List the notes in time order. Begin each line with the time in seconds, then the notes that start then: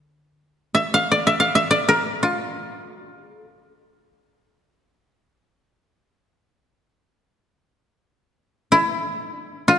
Already playing: D3 D5
0.75 E5
0.94 F5
1.12 D5
1.27 E5
1.40 F5
1.55 E5
1.71 D5
1.89 A#4
2.23 F4
2.82 F#4
3.05 G4
3.28 G#4
3.50 A4
8.72 E4
9.22 D#4
9.34 D4
9.68 F4